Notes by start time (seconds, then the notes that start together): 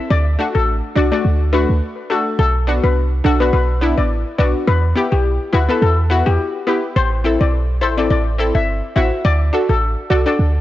0.10 D2 D5
0.39 A3 D4 F#4
0.55 A1 A4
0.95 C2 D4 F#4 D5
1.12 A3 D4 F#4 D5
1.25 D2
1.53 A3 D4 F#4 B4
1.69 D2
2.10 A3 D4 F#4 A4
2.39 B1 A4
2.67 B3 D4 F#4
2.84 C2 B4
3.24 B1 D4 F#4 A4
3.40 B3 D4 F#4 B4
3.53 B1 B4
3.81 B3 D4 E4
3.98 A1 D5
4.38 B1 B3 D4 F#4 D5
4.67 E2 B4
4.95 B3 E4 G4
5.12 B1 G4
5.53 D2 E4 F#4 B4
5.69 B3 E4 A4 B4
5.82 E2 A4
6.10 B3 E4 F#4
6.26 E2 G4
6.67 B3 E4 G4 B4
6.96 A1 C5
7.24 C4 E4 A4
7.41 B1 D5
7.81 A1 E4 A4 C5
7.97 C4 E4 A4 D5
8.10 A1 D5
8.38 C4 E4 A4
8.55 G1 E5
8.96 A1 C4 E4 F#4 E5
9.25 D2 D5
9.53 D4 F#4 A4
9.69 A1 A4
10.10 C2 F#4 A4 D5
10.26 D4 F#4 A4 D5
10.39 D2